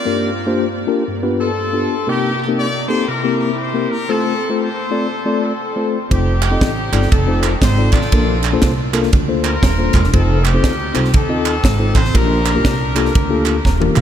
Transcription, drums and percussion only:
6.11 kick, ride bell
6.42 clap, ride bell
6.61 kick, snare, ride bell
6.93 clap, ride bell
7.02 snare
7.12 kick, ride bell
7.43 clap, ride bell
7.62 kick, snare, ride bell
7.92 kick, clap, ride bell
8.02 snare
8.12 kick, ride bell
8.43 clap, ride bell
8.62 kick, snare, ride bell
8.93 clap, ride bell
9.03 snare
9.13 kick, ride bell
9.44 clap, ride bell
9.63 kick, snare, ride bell
9.93 kick, clap, ride bell
10.04 snare
10.13 kick, ride bell
10.45 clap, ride bell
10.64 kick, snare, ride bell
10.95 clap, ride bell
11.05 snare
11.14 kick, ride bell
11.45 clap, ride bell
11.64 kick, snare, ride bell
11.95 kick, clap, ride bell
12.05 snare
12.15 kick, ride bell
12.45 clap, ride bell
12.65 kick, snare, ride bell
12.96 clap, ride bell
13.06 snare
13.15 kick, ride bell
13.45 clap, ride bell
13.65 kick, snare
13.82 high tom
13.96 clap, mid tom

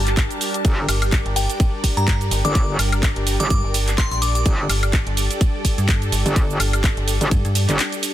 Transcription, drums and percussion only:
0.07 clap, closed hi-hat, shaker
0.17 kick, clap, closed hi-hat, shaker
0.31 closed hi-hat, shaker
0.41 open hi-hat, shaker
0.54 closed hi-hat, shaker
0.65 kick, closed hi-hat, ride, shaker
0.89 open hi-hat, ride, high woodblock, shaker
1.02 closed hi-hat, high woodblock, shaker
1.12 kick, clap, closed hi-hat, ride, shaker
1.26 closed hi-hat
1.36 open hi-hat, ride, shaker
1.50 closed hi-hat, shaker
1.60 kick, closed hi-hat, ride, shaker
1.84 kick, open hi-hat, ride, shaker
1.97 closed hi-hat, shaker
2.08 kick, clap, closed hi-hat, ride, shaker
2.21 closed hi-hat, shaker
2.31 open hi-hat, ride, shaker
2.45 closed hi-hat, shaker
2.55 kick, closed hi-hat, ride, shaker
2.79 open hi-hat, ride, high woodblock, shaker
2.92 closed hi-hat, high woodblock, shaker
3.03 kick, clap, closed hi-hat, ride, shaker
3.16 closed hi-hat
3.27 open hi-hat, ride, shaker
3.40 closed hi-hat, shaker
3.50 kick, closed hi-hat, ride, shaker
3.74 open hi-hat, ride, shaker
3.88 clap, closed hi-hat, shaker
3.98 kick, clap, closed hi-hat, ride, shaker
4.11 closed hi-hat, shaker
4.22 open hi-hat, ride, shaker
4.35 closed hi-hat, shaker
4.46 kick, closed hi-hat, ride, shaker
4.70 open hi-hat, ride, high woodblock, shaker
4.83 closed hi-hat, high woodblock, shaker
4.93 kick, clap, closed hi-hat, ride, shaker
5.07 closed hi-hat
5.17 open hi-hat, ride, shaker
5.31 closed hi-hat, shaker
5.41 kick, closed hi-hat, ride, shaker
5.65 kick, open hi-hat, ride, shaker
5.78 closed hi-hat, shaker
5.89 kick, clap, closed hi-hat, ride, shaker
6.02 closed hi-hat, shaker
6.12 open hi-hat, ride, shaker
6.26 closed hi-hat, shaker
6.36 kick, closed hi-hat, ride, shaker
6.50 shaker
6.60 open hi-hat, ride, high woodblock, shaker
6.73 closed hi-hat, high woodblock, shaker
6.84 kick, clap, closed hi-hat, ride, shaker
6.97 closed hi-hat
7.08 open hi-hat, ride, shaker
7.21 closed hi-hat, shaker
7.31 kick, closed hi-hat, ride, shaker
7.45 closed hi-hat, shaker
7.55 open hi-hat, ride, shaker
7.69 clap, closed hi-hat, shaker
7.79 clap, closed hi-hat, ride, shaker
7.92 closed hi-hat, shaker
8.03 open hi-hat, ride, shaker

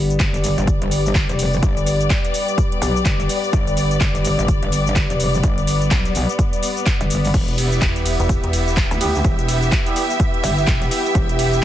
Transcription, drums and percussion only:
0.10 closed hi-hat, shaker
0.20 kick, clap, closed hi-hat, shaker
0.34 closed hi-hat, shaker
0.44 open hi-hat, shaker
0.58 closed hi-hat, shaker
0.67 kick, closed hi-hat, shaker
0.82 closed hi-hat
0.91 open hi-hat, shaker
1.06 shaker
1.15 kick, clap, closed hi-hat, shaker
1.29 closed hi-hat, shaker
1.39 open hi-hat, shaker
1.53 shaker
1.63 kick, closed hi-hat, shaker
1.77 closed hi-hat, shaker
1.86 open hi-hat, shaker
2.01 closed hi-hat, shaker
2.10 kick, clap, closed hi-hat, shaker
2.25 closed hi-hat, shaker
2.34 open hi-hat, shaker
2.48 closed hi-hat, shaker
2.58 kick, closed hi-hat, shaker
2.72 closed hi-hat
2.82 open hi-hat, shaker
2.96 shaker
3.06 kick, clap, closed hi-hat, shaker
3.20 closed hi-hat, shaker
3.29 open hi-hat, shaker
3.44 shaker
3.53 kick, closed hi-hat, shaker
3.67 closed hi-hat, shaker
3.77 open hi-hat, shaker
3.91 closed hi-hat, shaker
4.01 kick, clap, closed hi-hat, shaker
4.15 closed hi-hat, shaker
4.25 open hi-hat, shaker
4.39 closed hi-hat, shaker
4.48 kick, closed hi-hat, shaker
4.63 closed hi-hat
4.72 open hi-hat, shaker
4.87 shaker
4.96 kick, clap, closed hi-hat, shaker
5.10 closed hi-hat, shaker
5.20 open hi-hat, shaker
5.34 shaker
5.44 kick, closed hi-hat, shaker
5.58 closed hi-hat, shaker
5.67 open hi-hat, shaker
5.82 closed hi-hat, shaker
5.91 kick, clap, closed hi-hat, shaker
6.05 closed hi-hat, shaker
6.15 open hi-hat, shaker
6.29 closed hi-hat, shaker
6.39 kick, closed hi-hat, shaker
6.53 closed hi-hat, shaker
6.63 open hi-hat, shaker
6.77 closed hi-hat, shaker
6.86 kick, clap, closed hi-hat, shaker
7.01 closed hi-hat, shaker
7.10 open hi-hat, shaker
7.25 open hi-hat, shaker
7.34 kick, closed hi-hat, crash, shaker
7.48 closed hi-hat, shaker
7.58 open hi-hat, ride, shaker
7.72 closed hi-hat, shaker
7.82 kick, clap, closed hi-hat, shaker
7.96 closed hi-hat, shaker
8.06 open hi-hat, ride, shaker
8.20 closed hi-hat, shaker
8.29 kick, closed hi-hat, shaker
8.44 closed hi-hat
8.53 open hi-hat, ride, shaker
8.68 shaker
8.77 kick, clap, closed hi-hat, shaker
8.91 closed hi-hat, shaker
9.01 open hi-hat, ride, shaker
9.15 shaker
9.25 kick, closed hi-hat, shaker
9.39 closed hi-hat, shaker
9.48 open hi-hat, ride, shaker
9.63 closed hi-hat, shaker
9.72 kick, clap, closed hi-hat, shaker
9.86 closed hi-hat, shaker
9.96 open hi-hat, ride, shaker
10.10 closed hi-hat, shaker
10.20 kick, closed hi-hat, shaker
10.34 closed hi-hat
10.44 open hi-hat, ride, shaker
10.58 shaker
10.67 kick, clap, closed hi-hat, shaker
10.82 closed hi-hat, shaker
10.91 open hi-hat, ride, shaker
11.06 shaker
11.15 kick, closed hi-hat, shaker
11.29 closed hi-hat, shaker
11.39 open hi-hat, ride, shaker
11.53 closed hi-hat, shaker

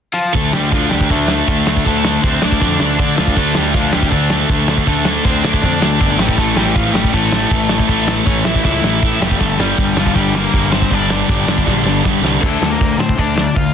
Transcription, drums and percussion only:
0.34 kick, open hi-hat
0.53 snare
0.72 kick, open hi-hat
0.91 snare
1.01 kick
1.10 kick, open hi-hat
1.28 snare
1.47 kick, open hi-hat
1.67 snare
1.77 kick
1.86 kick, open hi-hat
2.05 snare
2.23 kick, open hi-hat
2.42 snare
2.52 kick
2.60 kick, open hi-hat
2.80 snare
2.99 kick, open hi-hat
3.18 snare
3.27 kick
3.36 kick, open hi-hat
3.55 snare
3.73 kick, open hi-hat
3.93 snare
4.02 kick
4.11 kick, open hi-hat
4.30 snare
4.49 kick, open hi-hat
4.68 snare
4.78 kick
4.86 kick, open hi-hat
5.05 snare
5.25 kick, open hi-hat
5.45 snare
5.54 kick
5.63 kick, open hi-hat
5.82 snare
6.01 kick, open hi-hat
6.19 snare
6.29 kick
6.37 kick, open hi-hat
6.57 snare
6.76 kick, open hi-hat
6.95 snare
7.04 kick
7.14 kick, open hi-hat
7.32 snare
7.51 kick, open hi-hat
7.69 snare
7.79 kick
7.89 kick, open hi-hat
8.08 snare
8.26 kick, open hi-hat
8.45 snare
8.55 kick
8.65 kick, open hi-hat
8.84 snare
9.03 kick, open hi-hat
9.22 snare
9.31 kick
9.41 kick, open hi-hat
9.60 snare
9.78 kick, open hi-hat
9.97 snare
10.06 kick
10.16 kick, open hi-hat
10.35 snare
10.54 kick, open hi-hat
10.72 snare
10.82 kick
10.91 kick, open hi-hat
11.10 snare
11.29 kick, open hi-hat
11.48 snare
11.58 kick
11.67 kick, snare
11.87 snare
12.05 kick, snare
12.25 snare
12.43 kick, crash
12.63 snare
12.81 kick, open hi-hat
13.00 snare
13.09 kick
13.18 kick, open hi-hat
13.38 snare
13.56 kick, open hi-hat

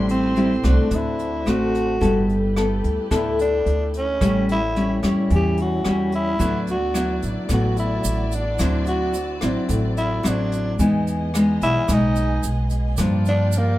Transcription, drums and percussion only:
0.09 closed hi-hat
0.37 closed hi-hat
0.64 cross-stick, closed hi-hat
0.91 kick, closed hi-hat
1.19 closed hi-hat
1.47 cross-stick, closed hi-hat
1.75 closed hi-hat
2.02 kick, closed hi-hat
2.29 closed hi-hat
2.57 cross-stick, closed hi-hat
2.84 closed hi-hat
3.11 kick, cross-stick, closed hi-hat
3.39 closed hi-hat
3.66 closed hi-hat
3.94 closed hi-hat
4.21 kick, cross-stick, closed hi-hat
4.49 closed hi-hat
4.76 closed hi-hat
5.03 cross-stick, closed hi-hat
5.30 kick, closed hi-hat
5.57 closed hi-hat
5.85 cross-stick, closed hi-hat
6.12 closed hi-hat
6.39 kick, closed hi-hat, shaker
6.67 closed hi-hat, shaker
6.94 cross-stick, closed hi-hat, shaker
7.22 closed hi-hat, shaker
7.49 kick, cross-stick, closed hi-hat, shaker
7.77 closed hi-hat, shaker
8.04 closed hi-hat, shaker
8.32 closed hi-hat, shaker
8.59 kick, cross-stick, closed hi-hat, shaker
8.86 closed hi-hat, shaker
9.14 closed hi-hat, shaker
9.41 cross-stick, closed hi-hat, shaker
9.69 kick, closed hi-hat, shaker
9.97 closed hi-hat, shaker
10.24 cross-stick, closed hi-hat, shaker
10.52 closed hi-hat, shaker
10.79 kick, closed hi-hat, shaker
11.07 closed hi-hat, shaker
11.34 cross-stick, closed hi-hat, shaker
11.62 closed hi-hat, shaker
11.88 kick, cross-stick, closed hi-hat, shaker
12.16 closed hi-hat, shaker
12.43 closed hi-hat, shaker
12.70 closed hi-hat, shaker
12.97 kick, cross-stick, closed hi-hat, shaker
13.26 closed hi-hat, shaker
13.52 closed hi-hat, shaker

